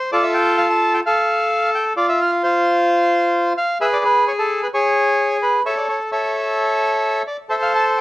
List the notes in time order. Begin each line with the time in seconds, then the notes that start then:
Already playing: C5
0.12 F4 A4 D5
0.23 E5
0.34 G5
0.58 F5
0.70 A5
0.94 G5
1.06 A4 F5
1.75 G5
1.97 F4 D5
2.09 E5
2.21 F5
2.43 F4 C5
3.57 F5
3.81 G#4 B4 E5
3.93 D5
4.05 B4
4.28 C#5
4.39 A4
4.63 B4
4.74 G#4 C#5
5.43 B4
5.66 A4 C#5 E5
5.77 D5
5.89 C#5
6.12 A4 C#5 E5
7.27 D5
7.49 A4 C5 E5
7.62 F5
7.75 A5
7.98 G5